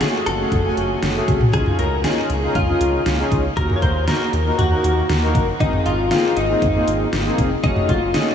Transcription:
0.01 analog polysynth A3 C#4 F#4 G#4, clean electric guitar G#4, snare, closed hi-hat
0.26 analog synth bass F#1, clean electric guitar A4, closed hi-hat
0.39 analog polysynth A3 C#4 F#4 G#4
0.52 analog synth bass F#1, kick, closed hi-hat, mid tom
0.65 analog polysynth A3 C#4 F#4 G#5
0.77 analog synth bass F#1, closed hi-hat
1.03 analog synth bass F#1, snare, closed hi-hat
1.15 analog polysynth A3 C#4 F#4 G#4
1.28 analog synth bass C2, kick, closed hi-hat
1.41 mid tom
1.53 analog synth bass C#2, analog polysynth C#4 D#4 F4 G#4, clean electric guitar G#4, kick, closed hi-hat
1.66 mid tom
1.79 analog synth bass C#2, clean electric guitar A#4, closed hi-hat
2.04 analog polysynth C#4 D#4 F4 G#4, clean electric guitar G#4, snare, closed hi-hat
2.30 analog synth bass C#2, closed hi-hat
2.43 analog polysynth C#4 D#4 F4 G#4
2.55 analog synth bass C#2, clean electric guitar F4, kick, closed hi-hat, mid tom
2.68 analog polysynth C#4 D#4 F4 G#4
2.81 analog synth bass C#2, closed hi-hat
3.06 analog synth bass C#2, snare, closed hi-hat
3.19 analog polysynth C#4 D#4 F4 G#4
3.32 analog synth bass C#2, kick, closed hi-hat
3.57 analog synth bass D#2, analog polysynth A#3 D#4 F#4 A#4, clean electric guitar A#4, kick, closed hi-hat
3.70 mid tom
3.76 clean electric guitar C#5
3.82 analog synth bass D#2, clean electric guitar C5, kick, closed hi-hat
4.08 analog polysynth A#3 D#4 F#4 A#4, clean electric guitar A#4, snare, closed hi-hat
4.33 analog synth bass D#2, closed hi-hat
4.46 analog polysynth A#3 D#4 F#4 A#4
4.58 analog synth bass D#2, clean electric guitar F#4, closed hi-hat, mid tom
4.71 analog polysynth A#3 D#4 F#4 A#4
4.84 analog synth bass D#2, closed hi-hat
5.09 analog synth bass D#2, snare, closed hi-hat
5.22 analog polysynth A#3 D#4 F#4 A#4
5.35 analog synth bass F#1, kick, closed hi-hat
5.60 analog synth bass G#1, analog polysynth A#3 C4 D#4 G#4, clean electric guitar D#4, kick, closed hi-hat
5.73 mid tom
5.86 analog synth bass G#1, clean electric guitar F4, closed hi-hat
6.11 analog polysynth A#3 C4 D#4 G#4, clean electric guitar F4, snare, closed hi-hat
6.37 analog synth bass G#1, clean electric guitar D#4, closed hi-hat
6.49 analog polysynth A#3 C4 D#4 G#4
6.62 analog synth bass G#1, kick, closed hi-hat, mid tom
6.75 analog polysynth A#3 C4 D#4 G#4
6.87 analog synth bass G#1, closed hi-hat
7.13 analog synth bass G#1, snare, closed hi-hat
7.26 analog polysynth A#3 C4 D#4 G#4
7.38 analog synth bass F1, kick, closed hi-hat
7.64 analog synth bass F#1, analog polysynth A3 C#4 F#4 G#4, clean electric guitar D#4, kick, closed hi-hat
7.76 mid tom
7.89 analog synth bass F#1, clean electric guitar F4, kick, closed hi-hat
8.14 analog polysynth A3 C#4 F#4 G#4, clean electric guitar D#4, snare, closed hi-hat

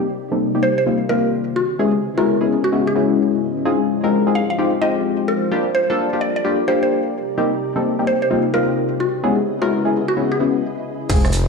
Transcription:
Already playing: string machine C3 D#4 G4 A#4 D5, ambient pad C4 G4
0.32 synth stab G3 A#3 C4 D#4 A4, ambient pad D#4
0.55 synth stab G3 A#3 C4 D#4 G4
0.63 synth pluck C5
0.78 synth pluck C5
0.86 synth stab G3 A#3 C4 D#4 F4
1.09 synth stab G3 A#3 C4 D#4 F4, synth pluck A#4
1.56 string machine C#3 G#3 E4 B4 D#5, ambient pad C#4, synth pluck F#4
1.79 synth stab G#3 B3 C#4 E4 G#4
2.01 ambient pad G#3
2.18 synth stab G#3 B3 C#4 E4 A#4, synth pluck F#4
2.41 synth stab G#3 B3 C#4 E4 G#4
2.50 ambient pad E4
2.64 synth pluck F#4
2.72 synth stab G#3 B3 C#4 E4 F#4
2.87 synth pluck G#4
2.96 synth stab G#3 B3 C#4 E4 F#4
3.65 string machine F3 G4 C5, synth stab G#3 C4 D#4 F4 G#4, ambient pad F4
4.04 synth stab G#3 C4 D#4 F4 A#4
4.12 ambient pad C5
4.27 synth stab G#3 C4 D#4 F4 G#4
4.35 synth pluck F5
4.50 synth pluck F5
4.58 synth stab G#3 C4 D#4 F4 G4
4.82 synth stab G#3 C4 D#4 F4 G4, synth pluck D#5
5.28 synth pluck A#4
5.51 string machine G3 F4 A4 A#4 D5, synth stab G3 A#3 D4 F4 G4, ambient pad G4
5.75 synth pluck C5
5.90 synth stab G3 A#3 D4 F4 A4
6.13 synth stab G3 A#3 D4 F4 G4
6.21 synth pluck D5
6.36 synth pluck D5
6.45 synth stab G3 A#3 D4 F4 G4
6.68 synth stab G3 A#3 D4 F4 G4, synth pluck C5
6.83 synth pluck C5
7.14 string machine C3 D#4 G4, ambient pad C4
7.38 synth stab G3 A#3 C4 D#4 G4
7.76 synth stab G3 A#3 C4 D#4 A4
7.99 synth stab G3 A#3 C4 D#4 G4
8.07 synth pluck C5
8.22 synth pluck C5
8.31 synth stab G3 A#3 C4 D#4 F4
8.54 synth stab G3 A#3 C4 D#4 F4, synth pluck A#4
9.00 string machine C#3 E4 G#4 B4 D#5, ambient pad C#4, synth pluck F#4
9.24 synth stab G#3 B3 C#4 E4 G#4
9.36 ambient pad G#4
9.41 ambient pad E4
9.62 synth stab G#3 B3 C#4 E4 A#4, synth pluck F#4
9.85 synth stab G#3 B3 C#4 E4 G#4
10.08 synth pluck F#4
10.17 synth stab G#3 B3 C#4 E4 F#4
10.32 synth pluck G#4
10.40 synth stab G#3 B3 C#4 E4 F#4
11.10 detuned saw bass F1, synth stab G#3 C4 D#4 F4 G#4, string machine G#4 C5 D#5 G5, kick, closed hi-hat, crash, maracas
11.25 cross-stick, maracas
11.33 open hi-hat, maracas

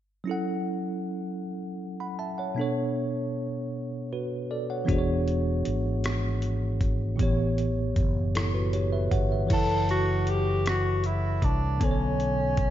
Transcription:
0.24 tine electric piano F#3 C#4 E4
0.29 tine electric piano A4 F#5
2.00 tine electric piano F#5 B5
2.19 tine electric piano E5 A5
2.38 tine electric piano C#5 F#5
2.55 tine electric piano B2 B3 D4
2.60 tine electric piano A4 C#5
4.13 tine electric piano F#4 B4
4.51 tine electric piano A4 D5
4.70 tine electric piano C#5 F#5
4.85 tine electric piano E3 B3 D4, kick, closed hi-hat
4.89 fretless electric bass E1, tine electric piano F#4 G#4 C5
4.98 tine electric piano C#5
5.28 closed hi-hat
5.65 fretless electric bass G#1, closed hi-hat
6.04 cross-stick, closed hi-hat
6.42 closed hi-hat
6.81 kick, closed hi-hat
7.16 tine electric piano A2 E3 B3, kick, closed hi-hat
7.20 fretless electric bass A1, tine electric piano G4 C#5
7.58 closed hi-hat
7.96 fretless electric bass F#1, kick, closed hi-hat
8.35 tine electric piano E4 A4, cross-stick, closed hi-hat
8.54 tine electric piano F#4 B4
8.73 tine electric piano G4 C#5, closed hi-hat
8.93 tine electric piano B4 E5
9.11 fretless electric bass G1, tine electric piano C#5 F#5, kick, closed hi-hat
9.32 tine electric piano B4 E5
9.47 fretless electric bass F#1, tine electric piano E3 E4 C#5, kick, closed hi-hat, crash
9.52 tine electric piano A4 F#5, tenor saxophone A4
9.89 tenor saxophone F#4, closed hi-hat
10.27 tenor saxophone G4, closed hi-hat
10.66 tenor saxophone F#4, cross-stick, closed hi-hat
11.04 tenor saxophone E4, closed hi-hat
11.42 fretless electric bass C2, tenor saxophone D4, kick, closed hi-hat
11.78 fretless electric bass B1, tine electric piano B2 D3 B3, kick, closed hi-hat
11.83 tenor saxophone C#4, tine electric piano A4 C5
11.91 tine electric piano C#5
12.20 closed hi-hat
12.57 kick, closed hi-hat

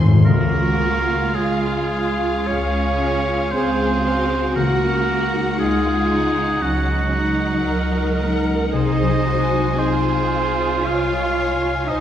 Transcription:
Already playing: harp G#2 G#3 G#4 C5 D#5 C6, violin section C6
0.07 timpani G#2
0.16 timpani G#2
0.24 double bass section C#2, harp C#3, cello section A#3, viola section F4, violin section F#4, oboe A#4
0.53 harp C#4
0.79 harp G#3, violin section F5
1.07 harp F4
1.34 double bass section C#2, cello section G#3, violin section F4, oboe G#4, harp C#5
1.63 harp G#4
1.91 violin section F5, harp F5
2.20 harp C#6
2.47 double bass section C#2, cello section C#4, violin section G#4, oboe C#5, harp F5
2.75 harp C#6
3.01 harp F5, violin section F5
3.28 harp G#4
3.52 double bass section C#2, cello section C4, viola section G#4, violin section G#4, oboe C5, harp C#5
3.79 harp F4
4.03 harp G#3, viola section F#4, violin section F5
4.31 harp C#4
4.56 double bass section C#2, timpani C#3, harp C#3, cello section A#3, violin section F#4 F#5, oboe A#4
4.82 harp C#4
5.06 harp A#3, violin section F#5
5.34 harp D#4
5.58 double bass section C#2, cello section G#3, violin section F4, viola section F4, oboe G#4, harp D#5
5.86 harp A#4
6.12 viola section D#4, harp D#5, violin section F#5
6.38 harp D#6
6.60 double bass section C#2, cello section F#3, viola section C#4, violin section D#4, oboe F#4, harp D#5
6.90 harp D#6
7.11 viola section D#4, harp D#5, violin section F#5
7.39 harp A#4
7.63 double bass section C#2, viola section A#4, harp D#5
7.91 harp D#4
8.15 harp A#3, violin section F#5
8.46 harp C#4
8.73 double bass section C2, harp C3, cello section D#4, viola section G#4, violin section C5, oboe D#5
9.01 harp F#3
9.26 harp G#3, viola section F#4, violin section G#5
9.53 harp D#4
9.77 double bass section C2, cello section C4, viola section F4, violin section G#4, oboe C5, harp D#5
10.04 harp G#4
10.31 harp D#5, violin section G#5
10.59 harp D#6
10.84 double bass section C2, cello section F4, violin section C#5, harp D#5, oboe F5
11.12 harp D#6
11.37 harp D#5, violin section G#5
11.64 harp G#4
11.88 double bass section C2, cello section D#4, viola section D#4, violin section C5, harp D#5, oboe D#5

